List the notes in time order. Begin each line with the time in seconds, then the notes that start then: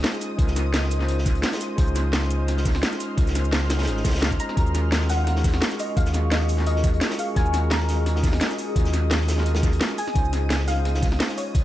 Already playing: G#3 C#4 D#4 F4 C5 D#5 D#6
0.03 snare, closed hi-hat
0.12 snare, shaker
0.21 closed hi-hat, shaker
0.37 C#2 G#3 C#4 D#4 F4, kick, closed hi-hat
0.41 A#4
0.48 snare, shaker
0.56 snare, closed hi-hat, shaker
0.74 snare, closed hi-hat
0.84 snare
0.91 closed hi-hat, shaker
0.98 G#3 C#4 D#4 F4, snare
1.03 C5
1.09 closed hi-hat
1.19 snare
1.26 kick, closed hi-hat, shaker
1.35 closed hi-hat
1.42 snare, closed hi-hat
1.53 snare, closed hi-hat, shaker
1.61 F6, closed hi-hat, shaker
1.76 C#2 G#3 C#4 D#4 F4, kick, closed hi-hat
1.81 C5
1.88 shaker
1.96 snare, closed hi-hat, shaker
2.13 snare, closed hi-hat
2.23 snare
2.31 closed hi-hat, shaker
2.38 G#3 C#4 D#4 F4
2.42 C5
2.48 snare, closed hi-hat
2.57 snare
2.65 kick, snare, closed hi-hat, open hi-hat, shaker
2.75 snare
2.83 snare, closed hi-hat
2.92 snare, shaker
3.00 closed hi-hat, shaker
3.15 C#2 G#3 C#4 D#4 F4, kick, closed hi-hat
3.20 A#4
3.27 snare, shaker
3.35 snare, closed hi-hat, shaker
3.45 shaker
3.52 snare, closed hi-hat
3.62 snare
3.70 snare, closed hi-hat, shaker
3.77 G#3 C#4 D#4 F4, snare, closed hi-hat
3.82 C5, snare, closed hi-hat
3.87 G#1, closed hi-hat
3.97 snare
4.05 C#2, kick, snare, closed hi-hat, shaker
4.09 snare, closed hi-hat
4.14 snare, closed hi-hat
4.18 snare, closed hi-hat
4.22 snare, closed hi-hat
4.31 kick, shaker
4.40 A#5, closed hi-hat, shaker
4.49 snare
4.55 D#2 G#3 C#4 F4 F#4 G#4 D#5 C#6, kick, closed hi-hat
4.60 A#4
4.67 shaker
4.75 snare, closed hi-hat, shaker
4.92 snare, closed hi-hat
5.01 snare
5.09 F#5, snare, closed hi-hat, open hi-hat, shaker
5.17 G#3 C#4 D#4 F#4 F5
5.21 A#4 F#5
5.27 snare, closed hi-hat
5.36 snare
5.44 kick, snare, closed hi-hat, open hi-hat, shaker
5.54 snare
5.62 snare, closed hi-hat
5.71 snare, shaker
5.79 D#5, closed hi-hat, open hi-hat, shaker
5.95 D#2 G#3 C#4 F4 F#4 F5, kick, closed hi-hat
5.99 G#4
6.06 snare, shaker
6.14 snare, closed hi-hat, shaker
6.31 D#5, snare, closed hi-hat
6.41 snare
6.49 closed hi-hat, open hi-hat, shaker
6.56 G#3 C#4 F4 F#4, snare
6.61 A#4
6.67 D#5, closed hi-hat
6.76 snare
6.84 kick, closed hi-hat, shaker
6.94 closed hi-hat
7.01 snare, closed hi-hat
7.11 snare, closed hi-hat, shaker
7.19 F5, closed hi-hat, open hi-hat, shaker
7.34 D#2 G#3 C#4 F4 F#4 G#5 D#6, kick, closed hi-hat
7.39 A#4
7.46 shaker
7.54 snare, closed hi-hat, shaker
7.71 A#5, snare, closed hi-hat
7.80 snare
7.89 snare, closed hi-hat, open hi-hat, shaker
7.96 G#3 C#4 F4 F#4
8.00 A#4
8.06 snare, closed hi-hat
8.16 snare
8.23 kick, snare, closed hi-hat, open hi-hat, shaker
8.33 snare
8.40 snare, closed hi-hat
8.50 snare, shaker
8.59 closed hi-hat, open hi-hat, shaker
8.74 D#2 G#3 C#4 F4 F#4, kick, closed hi-hat
8.78 G#4
8.85 snare, shaker
8.93 snare, closed hi-hat, shaker
9.11 snare, closed hi-hat
9.21 snare
9.28 snare, closed hi-hat, open hi-hat, shaker
9.35 G#3 C#4 F4 F#4, snare
9.40 A#4
9.46 closed hi-hat
9.55 snare, closed hi-hat
9.63 kick, snare, closed hi-hat, shaker
9.73 closed hi-hat
9.81 snare, closed hi-hat
9.90 shaker
9.98 C5 G#5, closed hi-hat, open hi-hat, shaker
10.08 snare
10.13 C#2 G#3 C#4 D#4 F4, kick, closed hi-hat
10.18 C5
10.25 shaker
10.33 snare, closed hi-hat, shaker
10.50 snare, closed hi-hat
10.60 snare
10.68 F5, snare, closed hi-hat, open hi-hat, shaker
10.75 G#3 C#4 D#4 F4
10.79 C5
10.85 snare, closed hi-hat
10.94 snare
11.02 kick, snare, closed hi-hat, open hi-hat, shaker
11.12 snare
11.20 snare, closed hi-hat
11.30 snare, shaker
11.38 C#5, closed hi-hat, open hi-hat, shaker
11.55 C#2, kick, closed hi-hat